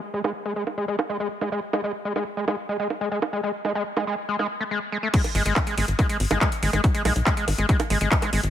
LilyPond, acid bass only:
\new Staff \with { instrumentName = "Acid bass" } { \clef bass \time 4/4 \key gis \phrygian \tempo 4 = 141 r16 gis16 gis16 r16 gis16 gis16 r16 gis16 gis16 r16 gis16 gis16 r16 gis16 gis16 r16 | gis16 gis16 r16 gis16 gis16 r16 gis16 gis16 r16 gis16 gis16 r16 gis16 gis16 r16 gis16 | gis16 r16 gis16 gis16 r16 gis16 gis16 r16 gis16 gis16 r16 a16 gis16 r16 gis16 a16 | gis16 r16 gis16 gis16 r16 gis16 gis16 r16 gis16 gis16 r16 gis16 gis16 r16 gis16 gis16 |
r16 gis16 gis16 r16 gis16 gis16 r16 gis16 gis16 r16 gis16 gis16 r16 gis16 gis16 r16 | }